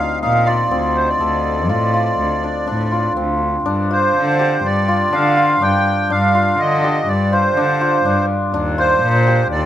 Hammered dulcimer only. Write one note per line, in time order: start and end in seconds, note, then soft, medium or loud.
0.00 0.71 C4 medium
0.00 0.22 D#4 medium
0.00 0.47 F4 medium
0.00 1.90 G4 medium
0.23 2.50 D#4 medium
0.47 1.69 F4 medium
0.71 3.16 C4 medium
1.20 4.13 A4 medium
1.69 1.93 F4 medium
1.94 2.91 F4 medium
2.44 2.67 D4 medium
2.67 3.65 D4 medium
2.92 3.90 F4 medium
3.17 7.17 C4 medium
3.66 5.12 D4 medium
3.91 4.88 F4 medium
4.39 6.83 G4 medium
4.88 5.37 F4 medium
5.13 5.61 D4 medium
5.37 6.34 F4 medium
5.62 6.10 D4 medium
6.10 7.57 D4 medium
6.35 7.32 F4 medium
6.84 9.26 G4 medium
7.33 7.81 F4 medium
7.57 8.05 D4 medium
7.81 8.78 F4 medium
8.05 8.53 D4 medium
8.54 9.66 D4 medium
8.78 9.66 F4 medium
9.27 9.66 G4 medium